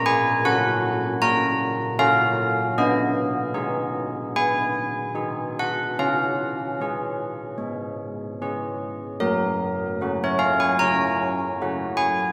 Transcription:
Already playing: A#3
0.06 G#5
0.45 C#4 F#4 F#5
1.22 A#3 A#5
1.99 C#4 F#4 F5
2.78 B3 D#5
3.54 D#4 G#4
4.36 B3 G#5
5.15 D#4 G#4
5.59 F#5
5.99 C#4 F5
6.81 C#4 G#4
7.58 G#3
8.42 C#4 G#4
9.20 F#3 A#4
10.01 C#4 F#4
10.24 C#5
10.39 F5
10.60 G#5
10.79 C#4 A#5
11.62 C#4 F#4
11.97 G#5

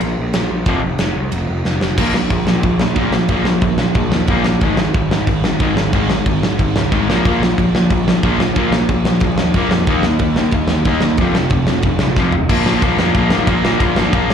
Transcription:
0.01 A#1, ride
0.19 A#1
0.33 A#1, snare, ride
0.50 A#1
0.66 F1 F2 C3 F3, kick, ride
0.84 F1
0.99 F1, snare, ride
1.16 C2
1.32 F1, ride
1.49 F1
1.65 F1, snare
1.81 F1, snare
1.98 A#1 A#2 F3 A#3, kick, crash
2.14 A#1 A#2 F3, snare
2.30 A#1 A#2 F3, kick, crash
2.47 A#2 F3, snare
2.63 A#1 A#2 F3, kick, crash
2.80 A#1 A#2 F3, snare
2.96 A#1 A#2 F3 A#3, kick, crash
3.13 A#1 A#2 F3, snare
3.28 A#1 A#2 F3 A#3, kick, crash
3.45 A#1 A#2 F3, snare
3.61 A#1 A#2 F3, kick, crash
3.78 A#2 F3, snare
3.95 A#1 A#2 F3, kick, crash
4.12 D#2 A#2 F3, snare
4.27 A#1 A#2 F3 A#3, kick, crash
4.45 A#1 A#2 F3, snare
4.61 G#1 G#2 D#3 G#3, kick, crash
4.77 G#1 G#2 D#3, snare
4.94 G#1 G#2 D#3, kick, crash
5.11 G#2 D#3, snare
5.27 G#1 G#2 D#3, kick, crash
5.44 G#1 G#2 D#3, snare
5.60 G#1 G#2 D#3 G#3, kick, crash
5.76 G#1 G#2 D#3, snare
5.93 G#1 G#2 D#3 G#3, kick, crash
6.10 G#1 G#2 D#3, snare
6.26 G#1 G#2 D#3, kick, crash
6.43 G#2 D#3, snare
6.59 G#1 G#2 D#3, kick, crash
6.76 C#2 G#2 D#3, snare
6.92 G#1 G#2 D#3 G#3, kick, crash
7.09 A#1 A#2 F3 A#3, snare
7.25 A#1 A#2 F3 A#3, kick, crash
7.41 A#1 A#2 F3, snare
7.58 A#1 A#2 F3, kick, crash
7.75 A#2 F3, snare
7.90 A#1 A#2 F3, kick, crash
8.07 A#1 A#2 F3, snare
8.23 A#1 A#2 F3 A#3, kick, crash
8.40 A#1 A#2 F3, snare
8.56 A#1 A#2 F3 A#3, kick, crash
8.73 A#1 A#2 F3, snare
8.89 A#1 A#2 F3, kick, crash
9.05 A#2 F3, snare
9.20 A#1 A#2 F3, kick, crash
9.38 D#2 A#2 F3, snare
9.54 A#1 A#2 F3, kick, crash
9.58 A#3
9.71 F2 A#2 F3, snare
9.87 D#2 D#3 A#3 D#4, kick, crash
10.03 D#2 D#3 A#3, snare
10.19 D#2 D#3 A#3, kick, crash
10.36 D#3 A#3, snare
10.51 D#2 D#3 A#3, kick, crash
10.68 D#2 D#3 A#3, snare
10.85 D#2 D#3 A#3 D#4, kick, crash
11.01 D#2 D#3 A#3, snare
11.17 F1 F2 C3 F3, kick, crash
11.35 F1 F2 C3, snare
11.50 F1 F2 C3, kick, crash
11.67 F2 C3, snare
11.82 F1 F2 C3, kick, crash
11.99 A#1, snare
12.03 F2 C3
12.16 F1 F2 C3 F3, kick, snare
12.32 F1 F2 C3, floor tom
12.49 A#1 A#2 F3 A#3, kick, crash
12.66 A#1 A#2 F3 A#3, snare
12.82 A#1 A#2 F3 A#3, kick, ride
12.99 F2 A#2 F3 A#3, snare
13.15 A#1 A#2 F3 A#3, kick, ride
13.30 G#1 A#2 F3 A#3, snare
13.47 A#1 A#2 F3 A#3, kick, ride
13.65 A#2 F3 A#3, snare
13.80 A#1 A#2 F3 A#3, kick, ride
13.96 G#1 A#2 F3 A#3, snare
14.13 A#1 A#2 F3 A#3, kick, ride
14.30 A#2 F3 A#3, snare

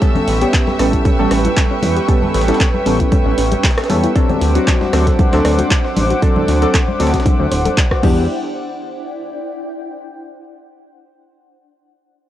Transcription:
Already playing: C#4 E4 G4 B4 E5 G5 C#6 E6
0.01 G3 B3 C#4 A4, kick, closed hi-hat
0.15 C#4, closed hi-hat, high conga, low conga
0.27 A1 C#4, closed hi-hat, open hi-hat
0.41 G3 B3 C#4 G4, closed hi-hat
0.51 G4 B4, kick, snare, clap, closed hi-hat
0.67 A4, snare, high conga
0.79 A1 G3 B3 C#4 A4 B4, cross-stick, closed hi-hat, open hi-hat
0.93 E4, kick, closed hi-hat
1.05 C#4, kick, closed hi-hat, high conga
1.18 A1 G3 B3 C#4 A4
1.31 A1 C#4, cross-stick, closed hi-hat, open hi-hat
1.45 E4, closed hi-hat, high conga
1.57 C#4, kick, snare, clap, closed hi-hat
1.71 C#4
1.83 E2 C#4, snare, open hi-hat, high conga
1.97 G4, closed hi-hat
2.08 G3 B3 C#4 G4 A4, kick, closed hi-hat
2.22 A4, high conga, low conga
2.34 A1 B4, snare, closed hi-hat, open hi-hat
2.41 snare, closed hi-hat
2.48 G3 B3 C#4 E4 A4, snare, closed hi-hat
2.54 snare, closed hi-hat
2.60 C#4, kick, snare, clap, closed hi-hat
2.74 A4, high conga
2.86 A1 G3 B3 C#4 A4, closed hi-hat, open hi-hat
3.00 E4, kick, closed hi-hat
3.12 C#4, kick, closed hi-hat, high conga
3.26 A1 C#4
3.38 A1 C#4, closed hi-hat, open hi-hat
3.52 G4, closed hi-hat, high conga
3.64 G4, kick, snare, clap, closed hi-hat
3.71 snare, closed hi-hat
3.78 A4, cross-stick, snare, closed hi-hat
3.84 snare, closed hi-hat
3.89 E2 G3 B3 C#4 A4 B4, closed hi-hat, open hi-hat, high conga
4.03 E4, closed hi-hat
4.15 F#3 C4 D4 A4 C5 F#5 D6, kick, closed hi-hat
4.29 C5, closed hi-hat, high conga, low conga
4.41 D2 D4, closed hi-hat, open hi-hat
4.55 F#3 C4 D4 F#4, closed hi-hat
4.67 D4, kick, snare, clap, closed hi-hat
4.81 D4, snare, high conga
4.93 D2 F#3 C4 D4 A4, cross-stick, snare, closed hi-hat, open hi-hat
5.07 A4, kick, snare, closed hi-hat
5.19 A4, kick, closed hi-hat, high conga
5.32 D2 F#3 C4 D4 A4 C5, snare, closed hi-hat
5.45 D2 D5, cross-stick, snare, open hi-hat
5.58 F#4, closed hi-hat, high conga
5.71 D4, kick, snare, clap, closed hi-hat
5.84 C5, snare
5.96 A1 D4, closed hi-hat, open hi-hat, high conga
6.02 F#5
6.10 F#4, closed hi-hat
6.22 F#3 C4 D4 A4, kick, closed hi-hat
6.36 D4, high conga, low conga
6.48 D2 D4, closed hi-hat, open hi-hat
6.62 F#3 C4 D4 A4, snare, closed hi-hat
6.74 A4, kick, snare, clap, closed hi-hat
6.88 C5, high conga
6.99 D2 F#3 C4 D4 A4 D5, closed hi-hat, open hi-hat
7.07 snare, closed hi-hat
7.14 F#4, kick, snare, closed hi-hat
7.20 snare, closed hi-hat
7.26 D4, kick, closed hi-hat, high conga
7.40 D2 C5
7.52 D1 C5, closed hi-hat, open hi-hat
7.65 A4, closed hi-hat, high conga
7.77 D5, kick, snare, clap, closed hi-hat
7.91 F#4, kick, cross-stick, snare
8.02 E2 E3 B3 D4 E4 G4, kick, crash, high conga
8.12 D5
8.46 G5

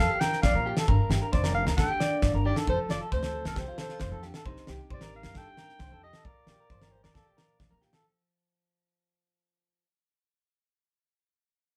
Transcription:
Already playing: F3 F4 A#4 F5
0.10 G4
0.20 D4 A#4 G5, snare
0.33 snare
0.42 A#1 F3 D5 F5, kick, snare
0.54 A#2 A#4
0.66 F4 G4
0.77 A4, snare
0.88 G1 G2 D4 A#4, kick
1.10 G1 G4, snare
1.22 A#4
1.32 F1 C5 D5, kick, snare
1.44 A#4, snare
1.54 D4 F5
1.66 D2 A#4, snare
1.77 D3 A4 G5, kick, snare
1.88 G4
2.00 A#3 D5, snare
2.22 G1 D3 D5, kick, snare
2.34 G1 A#4
2.45 D#3 G4 D5
2.56 A4, snare
2.67 F1 F3 A4 C5, kick
2.89 F1 F4 A4 D5, snare
3.01 A4
3.12 D2 C4 C5, kick, snare
3.23 A4, snare
3.35 A4
3.45 C2 A4 A#4, snare
3.56 C3 G4 C5, kick, snare
3.68 F4
3.78 D4 A4 C5, snare
3.89 F4, snare
4.00 F1 D#3 C5, kick, snare
4.12 F2 A4
4.22 D3 G4, snare
4.34 A4, snare
4.46 C2 C3 D#4 C5, kick
4.57 snare
4.67 C2 G4, snare
4.90 A1 G3 C5 D5, kick
5.01 A#4, snare
5.14 D#4 F5
5.23 G2 A#4, snare
5.35 G2 A4 G5, kick, snare
5.48 G4
5.57 C4 A#4, snare
5.69 snare
5.79 C2 D3 C5, kick, snare
5.92 F2 A4
6.03 C3 G4 D#5
6.13 A4, snare
6.25 A#1 A#2 F4 A#4 D5, kick
6.47 A#1 G4 A#4, snare
6.60 A#4
6.70 G1 F3 C5, kick, snare
6.82 A#4, snare
6.92 F4 C5
7.03 F2 A#4 D5, snare
7.14 A#2 A4, kick, snare
7.26 G4
7.37 D4 A#4, snare
7.60 A#1 F3, muted clean electric guitar stroke, kick, snare
7.71 A#2 A#4
7.82 F4 G4, snare
7.93 A4, snare

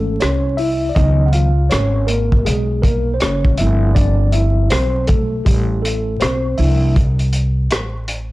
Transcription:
Already playing: G#1 E3 A3 C#4 A4
0.20 C2 C#4 C#5, cross-stick, closed hi-hat
0.57 E4 E5, open hi-hat
0.89 D5
0.95 C#2 D#3 F#3 B3 D#4 D#5, kick, closed hi-hat
1.26 F#5
1.32 F4 F5, closed hi-hat
1.70 G#1 C#4 C#5, cross-stick, closed hi-hat
2.07 A#3 A#4, closed hi-hat
2.32 kick
2.45 B1 G#3 G#4, closed hi-hat
2.82 A#3 A#4, kick, closed hi-hat
3.14 C5
3.20 F#1 C#4 C#5, cross-stick, closed hi-hat
3.45 kick
3.58 G1 F3 A3 C4 E4 E5, closed hi-hat
3.95 D4 D5, kick, closed hi-hat
4.32 E4 E5, closed hi-hat
4.70 B1 C4 C5, cross-stick, closed hi-hat
5.07 A3 A4, kick, closed hi-hat
5.45 A1 G3 G4, kick, closed hi-hat
5.82 A3 A4, closed hi-hat
6.20 B1 C4 C5, cross-stick, closed hi-hat
6.58 C2 F3 A#3 D4 E4 E5, open hi-hat
6.96 kick, closed hi-hat
7.19 closed hi-hat
7.33 closed hi-hat
7.71 A1, cross-stick, closed hi-hat
8.08 closed hi-hat

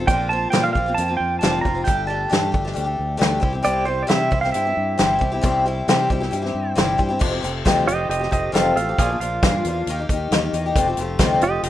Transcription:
0.00 F3 C4
0.07 A#1 A#2 D3 F3 A#3 C4 F4 G5, kick, closed hi-hat
0.29 F3 A#3 C4 F4 A5
0.50 A#2 D3 F3 A#3 C4 F4 G5, snare, closed hi-hat
0.64 F5
0.73 A#1 F3 A#3 C4 F5, kick
0.77 F4
0.86 F3 A#3 C4 F4
0.95 F2 F3 A5, closed hi-hat
0.99 A#3 C4 F4
1.08 F3 A#3 C4 F4
1.17 F2 G5
1.39 F1 A#2 D3 F3 A#3 F4 A5, closed hi-hat
1.43 C4, snare
1.61 F1 F3 A#5, kick
1.66 A#3 C4 F4
1.75 F3 A#3 C4 F4
1.84 G1 G3 A3 D4 G4 G5, kick, closed hi-hat
2.07 G3 A3 D4 G4 A5
2.30 G2 G3 A3 D4 G4, snare, closed hi-hat
2.52 G1 G3 A3 D4 G4, kick
2.65 A3 D4 G4, snare
2.73 D2 G3 A3 D4 G4, closed hi-hat
2.84 A3 D4 G4
2.99 D2
3.17 D2 G3 A3 D4 G4, closed hi-hat
3.22 snare
3.40 C2 G3 C4 E4 G4, kick
3.53 C4 E4 G4
3.63 C2 C3 G3 C4 E4 G4 D5, closed hi-hat
3.85 G3 C4 E4 G4 C5
4.03 D5
4.07 C3 G3 C4 E4 G4 E5, snare, closed hi-hat
4.31 C2 G3 C4 E4 G4, kick
4.41 C4 E4 G4 F5, snare
4.52 G2 G3 C4 E4 G4 E5, closed hi-hat
4.65 C4 E4 G4
4.77 G2
4.98 G1 C3 G3 C4 E4 G4, snare, closed hi-hat
5.19 C2 G3 C4 E4 G4, kick
5.32 C4 E4 G4
5.41 C2 C3 G3 C4 E4 G4, kick, closed hi-hat
5.66 G3 C4 E4 G4
5.88 C3 G3 C4 E4 G4, snare, closed hi-hat
6.10 C2 G3 C4 E4 G4, kick
6.20 C4 E4 G4, snare
6.31 G2 G3 C4 E4 G4, closed hi-hat
6.42 C4 E4 G4, snare
6.55 G2
6.75 G1 C3 G3 C4 E4 G4, snare, closed hi-hat
6.98 G2 G3 C4 E4 G4, kick
7.09 C4 E4 G4
7.19 F1 F2 C3 F3 A3 C4 G4, kick, crash
7.30 F3 A3 C4 G4
7.41 F1 F3 A3 C4 G4, closed hi-hat
7.65 D2 F2 C3 F3 A3 C4 G4, kick, snare, closed hi-hat
7.87 F1 C4 G4 D#5, closed hi-hat
8.09 F1 G4 D#5, closed hi-hat
8.19 F3 A3 C4 G4, snare
8.31 F1 F3 A3 C4 G4 D#5, kick, closed hi-hat
8.52 F1 F2 C3 F3 A3 C4 G4 A4 F5, snare, closed hi-hat
8.75 A1 F3 A3 C4 G4 A4 F5, closed hi-hat
8.89 F3 A3 C4 G4
8.98 A#1 A#2 F3 A#3 D4 F4 G#4 F5, kick, closed hi-hat
9.10 A#3 D4 F4
9.20 A#1 F3 A#3 D4 F4 F5, closed hi-hat
9.43 G2 A#2 F3 A#3 D4 F4, kick, snare, closed hi-hat
9.65 E2 F3 A#3 D4, closed hi-hat
9.69 F4
9.87 D#2 D#3 A#3 D#4, closed hi-hat
9.91 G4
9.99 A#3 D#4 G4
10.09 D#2 D#3 A#3 D#4 G4, kick, closed hi-hat
10.31 D#2 D#3 A#3 D#4 G4, snare, closed hi-hat
10.53 E2 D#3 A#3 D#4 G4, closed hi-hat
10.66 A#3 D#4 G4
10.76 F1 F2 C3 F3 A3 C4 G4, kick, closed hi-hat
10.88 F3 A3 C4 G4
10.97 F1 F3 A3, closed hi-hat
11.01 C4 G4
11.19 D2 F2 C3 F3 A3 C4 G4, kick, snare, closed hi-hat
11.41 F1 F3 C4 G4 D#5, closed hi-hat
11.63 F1 G4 D#5, closed hi-hat

